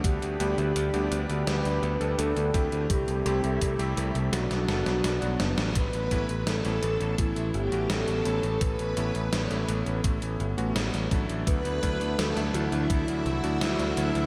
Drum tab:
HH |xxxxxxxxxxxxxxxx|xxxxxxxxxxxxxxxx|xxxxxxxxxxxxxxxx|xxxxxxxxxxxxxxxx|
SD |--------o-------|--------ooooo-oo|----o-------o---|----o-------o---|
BD |o-------------o-|o---o-----------|o-o-----o-------|o-------o-----o-|

HH |xxxxxxxxxxxxxxxx|
SD |----o-------o---|
BD |o-o-----o-------|